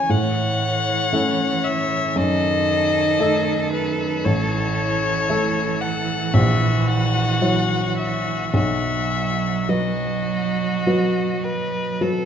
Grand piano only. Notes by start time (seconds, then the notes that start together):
Already playing: G#3 C#4 E4
0.09 A2
1.13 A3 C#4 E4
2.16 F#2
3.19 A3 D#4 A4
4.25 A1
5.29 A3 E4 A4
6.34 A#1
7.41 F#3 E4 C#5
8.54 B1
9.69 F#3 F#4 B4
10.86 F#3 F#4 B4
12.01 F#3 F#4 B4